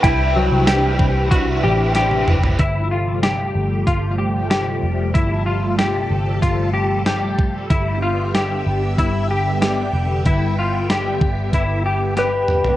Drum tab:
HH |x---x---x---x---|x---x---x---x---|x---x---x---x---|x---x---x---x---|
TB |----x-----------|----------------|----------------|----------------|
SD |----o-------o---|----o-------o---|----o-------o---|----o-------o---|
T1 |-------------o--|----------------|----------------|----------------|
T2 |--------------o-|----------------|----------------|----------------|
FT |---------------o|----------------|----------------|----------------|
BD |o-----o-o-------|o-------o-------|o-------o-----o-|o-------o-------|

HH |x---x---x---x---|
TB |----------------|
SD |----o-------o---|
T1 |----------------|
T2 |--------------o-|
FT |---------------o|
BD |o-----o-o-------|